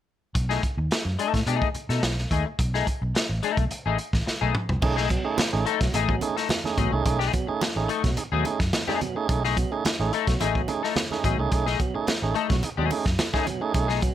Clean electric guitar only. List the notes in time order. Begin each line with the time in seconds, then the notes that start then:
0.35 muted clean electric guitar stroke
0.49 A3 D#4 G#4
0.63 muted clean electric guitar stroke
0.78 muted clean electric guitar stroke
0.92 muted clean electric guitar stroke
1.06 muted clean electric guitar stroke
1.19 A3 D#4 A4
1.34 muted clean electric guitar stroke
1.47 A3 D#4 G#4
1.75 muted clean electric guitar stroke
1.89 A3 D#4 A4
2.03 muted clean electric guitar stroke
2.31 A3 D#4 G#4
2.46 muted clean electric guitar stroke
2.60 muted clean electric guitar stroke
2.74 A3 D#4 G#4
3.02 muted clean electric guitar stroke
3.15 muted clean electric guitar stroke
3.29 muted clean electric guitar stroke
3.43 A3 D#4 A4
3.58 muted clean electric guitar stroke
3.71 muted clean electric guitar stroke
3.86 A3 D#4 G#4
3.98 muted clean electric guitar stroke
4.13 muted clean electric guitar stroke
4.26 muted clean electric guitar stroke
4.41 A3 D#4 G#4
4.54 muted clean electric guitar stroke
4.69 muted clean electric guitar stroke
4.82 muted clean electric guitar stroke
4.96 A3 D#4 G#4
5.09 muted clean electric guitar stroke
5.25 muted clean electric guitar stroke
5.37 muted clean electric guitar stroke
5.53 muted clean electric guitar stroke
5.66 A3 D#4 A4
5.81 muted clean electric guitar stroke
5.94 A3 D#4 G#4
6.22 muted clean electric guitar stroke
6.37 A3 D#4 A4
6.77 A3 D#4 G#4
6.92 muted clean electric guitar stroke
7.05 muted clean electric guitar stroke
7.19 A3 D#4 G#4
7.33 muted clean electric guitar stroke
7.47 muted clean electric guitar stroke
7.61 muted clean electric guitar stroke
7.75 muted clean electric guitar stroke
7.88 A3 D#4 A4
8.04 muted clean electric guitar stroke
8.17 muted clean electric guitar stroke
8.32 A3 D#4 G#4
8.45 muted clean electric guitar stroke
8.60 muted clean electric guitar stroke
8.73 muted clean electric guitar stroke
8.87 A3 D#4 G#4
9.01 muted clean electric guitar stroke
9.16 muted clean electric guitar stroke
9.30 muted clean electric guitar stroke
9.45 A3 D#4 G#4
9.58 muted clean electric guitar stroke
9.73 muted clean electric guitar stroke
9.86 muted clean electric guitar stroke
10.00 muted clean electric guitar stroke
10.13 A3 D#4 A4
10.28 muted clean electric guitar stroke
10.40 A3 D#4 G#4
10.68 muted clean electric guitar stroke
10.83 A3 D#4 A4
10.96 muted clean electric guitar stroke
11.24 A3 D#4 G#4
11.38 muted clean electric guitar stroke
11.52 muted clean electric guitar stroke
11.66 A3 D#4 G#4
11.80 muted clean electric guitar stroke
11.94 muted clean electric guitar stroke
12.07 muted clean electric guitar stroke
12.22 muted clean electric guitar stroke
12.34 A3 D#4 A4
12.49 muted clean electric guitar stroke
12.63 muted clean electric guitar stroke
12.77 A3 D#4 G#4
12.91 muted clean electric guitar stroke
13.05 muted clean electric guitar stroke
13.19 muted clean electric guitar stroke
13.34 A3 D#4 G#4
13.47 muted clean electric guitar stroke
13.61 muted clean electric guitar stroke
13.74 muted clean electric guitar stroke
13.88 A3 D#4 G#4
14.02 muted clean electric guitar stroke